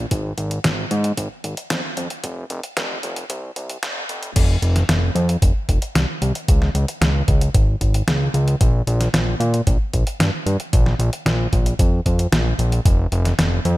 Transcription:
0.11 G#1, kick, closed hi-hat
0.38 G#1, closed hi-hat
0.51 closed hi-hat
0.64 G#1, kick, snare, closed hi-hat
0.91 G#2, closed hi-hat
1.04 closed hi-hat
1.17 G#1, kick, closed hi-hat
1.44 G#1, closed hi-hat
1.57 closed hi-hat
1.70 F2, kick, snare, closed hi-hat
1.97 F2, closed hi-hat
2.10 closed hi-hat
2.24 F1, kick, closed hi-hat
2.50 F1, closed hi-hat
2.63 closed hi-hat
2.77 F1, kick, snare, closed hi-hat
3.03 F1, closed hi-hat
3.16 closed hi-hat
3.30 C2, kick, closed hi-hat
3.56 C2, closed hi-hat
3.70 closed hi-hat
3.83 F1, kick, snare, closed hi-hat
4.09 F1, closed hi-hat
4.23 closed hi-hat
4.36 F1, kick, closed hi-hat, crash
4.62 F1, closed hi-hat
4.76 snare, closed hi-hat
4.89 F1, snare, closed hi-hat
5.15 F2, closed hi-hat
5.29 closed hi-hat
5.42 F1, kick, closed hi-hat
5.69 F1, kick, closed hi-hat
5.82 closed hi-hat
5.95 C2, snare, closed hi-hat
6.22 C2, closed hi-hat
6.35 closed hi-hat
6.48 C#2, kick, closed hi-hat
6.62 snare
6.75 C#2, closed hi-hat
6.88 closed hi-hat
7.01 C#2, snare, closed hi-hat
7.28 C#2, kick, closed hi-hat
7.41 closed hi-hat
7.55 G#1, kick, closed hi-hat
7.81 G#1, kick, closed hi-hat
7.94 closed hi-hat
8.08 C#2, snare, closed hi-hat
8.34 C#2, closed hi-hat
8.48 closed hi-hat
8.61 A#1, kick, closed hi-hat
8.87 A#1, closed hi-hat
9.01 snare, closed hi-hat
9.14 A#1, snare, closed hi-hat
9.40 A#2, closed hi-hat
9.54 closed hi-hat
9.67 A#1, kick, closed hi-hat
9.94 A#1, kick, closed hi-hat
10.07 closed hi-hat
10.20 G2, snare, closed hi-hat
10.46 G2, closed hi-hat
10.60 closed hi-hat
10.73 A#1, kick, closed hi-hat
10.86 snare
10.99 A#1, closed hi-hat
11.13 closed hi-hat
11.26 A#1, snare, closed hi-hat
11.53 A#1, kick, closed hi-hat
11.66 closed hi-hat
11.79 F2, kick, closed hi-hat
12.06 F2, kick, closed hi-hat
12.19 closed hi-hat
12.32 A#1, snare, closed hi-hat
12.59 A#1, closed hi-hat
12.72 closed hi-hat
12.85 F1, kick, closed hi-hat
13.12 F1, closed hi-hat
13.25 snare, closed hi-hat
13.39 F1, snare, closed hi-hat
13.65 F2, closed hi-hat

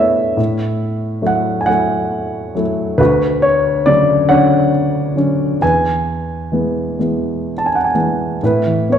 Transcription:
Already playing: A2 A3 B3 E4 C#5 D5 E5
0.37 A2
1.22 F#3 A3 E4
1.27 F#5
1.61 G#5
1.66 F#3 A3 E4 F#5
2.55 F#3 A3 E4
2.98 D2 F#4 B4
3.42 C#5
3.86 C#3 D3 F#3 D5
4.29 D3 F#3 C#4 C#5 F#5
5.16 D3 F#3 C#4
5.61 E2 B4 G#5
6.52 E3 G#3 B3
6.99 E3 G#3 B3
7.58 A5
7.66 G#5
7.75 F#5
7.84 G#5
7.94 E3 G#3 B3
8.43 A2 E4 B4
8.66 E3
8.89 B3 C#5

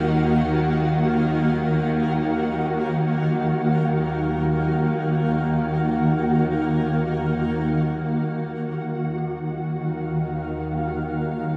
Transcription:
Already playing: D#2 D#3 A#3 F#4 F5
8.14 D#2 D#3 F#4
9.08 F5
9.13 A#3
9.18 F4

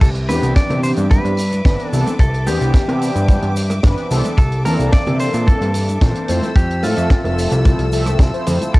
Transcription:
0.01 C2 A4 B4 E5 D6, kick, closed hi-hat, crash, tambourine, shaker
0.15 closed hi-hat, tambourine
0.29 E2 E3 B3 C4 D4 G4 B4, open hi-hat, tambourine, high bongo, high conga, shaker
0.43 C2, closed hi-hat, tambourine, shaker
0.56 D5, kick, snare, closed hi-hat, tambourine, shaker
0.70 C3 E3 B3 C4 D4 G4, closed hi-hat, tambourine, high bongo, high conga, low conga
0.83 C5, open hi-hat, tambourine, shaker
0.96 G2, closed hi-hat, tambourine, high bongo, shaker
1.10 E3 B3 C4 D4 G4 B4, kick, closed hi-hat, tambourine, high conga, shaker
1.25 G2, closed hi-hat, tambourine
1.37 open hi-hat, tambourine, shaker
1.52 closed hi-hat, tambourine, high conga, shaker
1.65 G1 E3 B3 C4 D4 B4, kick, snare, closed hi-hat, tambourine, shaker
1.79 closed hi-hat, tambourine
1.89 C2 E3 B3 C4 A4
1.93 D4 A4, open hi-hat, tambourine, shaker
2.06 closed hi-hat, tambourine, high bongo, high conga, shaker
2.19 C2 A4, kick, closed hi-hat, tambourine, shaker
2.34 closed hi-hat, tambourine
2.46 E2 E3 B3 C4 D4 G4, open hi-hat, tambourine, high bongo, high conga, shaker
2.61 C2, closed hi-hat, tambourine, shaker
2.74 kick, snare, closed hi-hat, tambourine, shaker
2.87 C3 E3 B3 C4 D4 G4, closed hi-hat, tambourine, high bongo, high conga
3.01 open hi-hat, tambourine, shaker
3.15 G2, closed hi-hat, tambourine, high bongo, shaker
3.28 E3 B3 C4 D4 G4, kick, closed hi-hat, tambourine, high conga, shaker
3.42 G2, closed hi-hat, tambourine
3.56 open hi-hat, tambourine, shaker
3.70 cross-stick, closed hi-hat, tambourine, high bongo, high conga, shaker
3.83 G1 E3 B3 C4 D4 B4, kick, snare, closed hi-hat, tambourine, shaker
3.97 closed hi-hat, tambourine
4.10 C2 E3 B3 C4 D4 A4, open hi-hat, tambourine, shaker
4.24 closed hi-hat, tambourine, high conga, shaker
4.38 C2 A#3 A4 A5, kick, closed hi-hat, tambourine, shaker
4.52 closed hi-hat, tambourine
4.65 E2 E3 A#3 C4 D4 A4 A#4, open hi-hat, tambourine, high bongo, high conga, shaker
4.79 C2, closed hi-hat, tambourine, shaker
4.92 D5, kick, snare, closed hi-hat, tambourine, shaker
5.06 C3 E3 A#3 C4 D4 A4, closed hi-hat, tambourine, high bongo, high conga, low conga
5.19 C5, open hi-hat, tambourine, shaker
5.34 A#2, closed hi-hat, tambourine, high bongo, shaker
5.46 E3 A#3 C4 D4 A4, kick, closed hi-hat, tambourine, high conga, shaker
5.61 G2, closed hi-hat, tambourine
5.74 open hi-hat, tambourine, shaker
5.89 closed hi-hat, tambourine, high conga, shaker
6.01 A#1 E3 A#3 C4 D4 C5, kick, snare, closed hi-hat, tambourine, shaker
6.15 closed hi-hat, tambourine
6.28 F2 F3 A3 C4 E4 A4 C5 E6, open hi-hat, tambourine, shaker
6.42 closed hi-hat, tambourine, high bongo, high conga, shaker
6.56 F2 G4, kick, closed hi-hat, tambourine, shaker
6.70 closed hi-hat, tambourine
6.83 A2 F3 A3 C4 F4 A4 E5, open hi-hat, tambourine, high bongo, high conga, shaker
6.96 F2, closed hi-hat, tambourine, shaker
7.10 kick, snare, closed hi-hat, tambourine, shaker
7.24 F1 F3 A3 C4 A4 E5, closed hi-hat, tambourine, high bongo, high conga
7.39 open hi-hat, tambourine, shaker
7.51 C2, closed hi-hat, tambourine, high bongo, shaker
7.64 F3 A3 C4 E4 A4, kick, closed hi-hat, tambourine, high conga, shaker
7.79 C2, closed hi-hat, tambourine
7.92 F3 A3 C4 A4 E5, open hi-hat, tambourine, shaker
8.06 cross-stick, closed hi-hat, tambourine, high bongo, high conga, shaker
8.19 C2, kick, snare, closed hi-hat, tambourine, shaker
8.33 F3 A3 C4 E4 C5, closed hi-hat, tambourine
8.47 F2, open hi-hat, tambourine, low conga, shaker
8.61 closed hi-hat, tambourine, high conga, shaker
8.74 C2 A4 B4 E5 D6, kick, closed hi-hat, tambourine, shaker

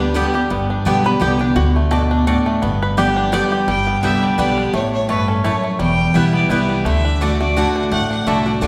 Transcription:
Already playing: D2 B4
0.00 B3 D4 G4
0.14 D3 G3 B3 G4 D5 G5
0.34 B3 G4
0.50 G1 G2 B3
0.70 D4
0.85 B1 D3 G3 B3 G4 D5 G5
1.04 B3 G4 B4
1.20 C2 D3 G3 B3 G4 D5 G5
1.39 B3 D4 G4
1.56 D2 D3 F#4
1.76 A3
1.91 B2 A3 F#4 A4 D5 A5
2.11 D4
2.27 A2 A3 D4 F#4 D5 A5
2.46 A3
2.62 G1 G2 B3
2.82 B4
2.97 D3 G3 B3 G4 D5 G5
3.16 D4
3.32 D3 G3 B3 G4 D5 G5
3.52 G4
3.67 G1 G2 G3 G5
3.87 B3
4.03 C2 D3 G3 B3 D4 G4 D5 E5 G5
4.23 G3 D5
4.38 B1 D3 G3 B3 G4 D5 G5
4.58 D4
4.73 A1 A2 A3 C#5
4.93 C#5
5.09 G2 A3 E4 B4 C#5 A5
5.28 C#4 A4
5.44 F#2 A3 E4 C#5 A5
5.64 A3
5.79 E1 E2 G3 G5
6.14 B1 E3 G3 B3 E4 B4 E5 G5
6.33 B3 D5
6.49 C2 E3 G3 B3 E4 B4 D5 G5
6.69 G3
6.85 D2 D3 A3 E5
7.05 D4
7.21 D3 A3 D4 F#4 D5 A5
7.40 A3 D4 F#4 D5
7.56 D3 A3 D4 F#4 D5 F#5 A5
7.76 D4
7.92 A1 A2 A3 F#5
8.11 D4 F#5
8.26 C2 D3 A3 D4 F#4 D5 E5 A5
8.46 D4 F#4 D5
8.61 D2 D3 A3 D4 F#4 D5 A5

